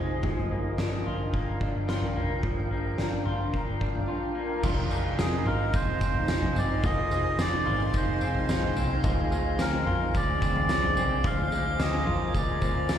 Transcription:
Already playing: picked electric bass F1, clean electric guitar D#3 G#3 C4 F4, ambient pad D#4 C5 D#5 G#5
0.23 picked electric bass G1, clean electric guitar F3, ambient pad D4 A#4 F5 G5, kick, floor tom
0.50 picked electric bass G1, clean electric guitar A#3
0.78 picked electric bass G1, clean electric guitar D4, snare
1.06 picked electric bass G1, clean electric guitar F4, floor tom
1.34 picked electric bass G1, clean electric guitar A#3, kick
1.61 picked electric bass G1, clean electric guitar D4, kick
1.88 picked electric bass G1, clean electric guitar F4, snare
2.02 floor tom
2.16 picked electric bass F1, clean electric guitar A#3, floor tom
2.43 picked electric bass G1, clean electric guitar F3, kick, floor tom
2.70 picked electric bass G1, clean electric guitar A#3
2.98 picked electric bass G1, clean electric guitar D4, snare
3.25 picked electric bass G1, clean electric guitar F4, floor tom
3.53 picked electric bass G1, clean electric guitar A#3, kick
3.81 picked electric bass G1, clean electric guitar D4, kick
3.95 floor tom
4.08 clean electric guitar F4
4.35 clean electric guitar A#3
4.63 picked electric bass F1, clean electric guitar D#3 F4, ambient pad D#4 C5 F5 G#5, kick, floor tom, crash, tambourine
4.90 picked electric bass F1, clean electric guitar G#3, tambourine
5.18 picked electric bass F1, clean electric guitar C4, synth texture D#4, melodica G#4, snare, tambourine
5.45 picked electric bass G#1, clean electric guitar F4, melodica A#4, floor tom
5.73 picked electric bass F1, clean electric guitar G#3, melodica C5, kick, tambourine
6.01 picked electric bass F1, clean electric guitar C4, kick, tambourine
6.14 floor tom
6.28 picked electric bass F1, clean electric guitar G#3, synth texture F4, snare, tambourine
6.42 floor tom
6.56 picked electric bass G1, clean electric guitar C4, melodica D5, floor tom, tambourine
6.84 picked electric bass F1, clean electric guitar D#3 F4, melodica D#5, ambient pad F5, kick, floor tom, tambourine
7.11 picked electric bass F1, clean electric guitar G#3, tambourine
7.38 picked electric bass F1, clean electric guitar C4, melodica D5, snare, tambourine
7.66 picked electric bass G#1, clean electric guitar F4, floor tom
7.94 picked electric bass F1, clean electric guitar G#3, melodica C5, kick, tambourine
8.21 picked electric bass F1, clean electric guitar C4, tambourine
8.35 floor tom
8.48 picked electric bass F1, clean electric guitar G#3, synth texture C5, snare, tambourine
8.63 floor tom
8.76 picked electric bass C2, clean electric guitar C4, floor tom, tambourine
9.04 picked electric bass D2, ambient pad D3 C5 F5, clean electric guitar G#3 F4, kick, floor tom, tambourine
9.31 picked electric bass D2, clean electric guitar G#3, tambourine
9.59 picked electric bass D2, clean electric guitar C4, melodica A#4, snare, tambourine
9.86 picked electric bass F2, clean electric guitar F4, floor tom
10.14 picked electric bass D2, clean electric guitar G#3, synth texture D5, melodica D5, kick, tambourine
10.42 picked electric bass D2, clean electric guitar C4, kick, tambourine
10.56 floor tom
10.68 picked electric bass D2, clean electric guitar G#3, synth texture C5, snare, tambourine
10.83 floor tom
10.96 picked electric bass C2, clean electric guitar C4, floor tom, tambourine
11.24 picked electric bass D2, clean electric guitar G#3 F4, melodica F5, synth texture D6, kick, floor tom, tambourine
11.52 picked electric bass D2, clean electric guitar G#3, tambourine
11.79 picked electric bass D2, clean electric guitar C4, synth texture A#4, melodica D#5, snare, tambourine
12.07 picked electric bass F2, clean electric guitar F4, floor tom
12.34 picked electric bass D2, clean electric guitar G#3, melodica D5, kick, tambourine
12.62 picked electric bass D2, clean electric guitar C4, kick, tambourine
12.89 picked electric bass D2, clean electric guitar G#3, snare, tambourine

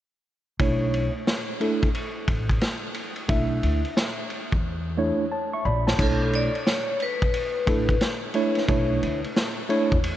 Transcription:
0.59 upright bass B1, tine electric piano A3 D4 E4 C#5, kick, ride
0.94 ride
1.27 snare, hi-hat pedal, ride
1.60 tine electric piano A3 D4 E4 A4, ride
1.83 kick, ride
1.95 ride
2.28 upright bass A1, kick, ride
2.49 kick, ride
2.61 snare, hi-hat pedal, ride
2.94 ride
3.16 ride
3.29 upright bass B1, tine electric piano A3 D4 E4 E5, kick, ride
3.63 upright bass D2, ride
3.85 ride
3.97 snare, hi-hat pedal, ride
4.30 ride
4.52 upright bass E2, kick
4.98 tine electric piano A3 D4 E4 C#5
5.32 tine electric piano C#5 A5
5.53 tine electric piano E5 C#6
5.65 upright bass A#1, tine electric piano D5 B5
5.87 tine electric piano C#5 A5, snare
5.98 upright bass B1, tine electric piano A3 D4 E4 C#5, vibraphone A4, kick, crash
6.33 vibraphone D5, ride
6.55 ride
6.67 vibraphone C#5, snare, hi-hat pedal, ride
7.00 vibraphone B4, ride
7.22 kick, ride
7.34 ride
7.67 upright bass A1, tine electric piano A3 D4 E4 A4, kick, ride
7.89 kick, ride
8.01 snare, hi-hat pedal, ride
8.34 tine electric piano A3 D4 E4 C#5, ride
8.55 snare, ride
8.68 upright bass B1, tine electric piano A3 D4 E4 C#5, kick, ride
9.03 upright bass D2, ride
9.24 ride
9.36 snare, hi-hat pedal, ride
9.69 tine electric piano A3 D4 E4 C#5, ride
9.92 upright bass E2, kick
10.04 ride

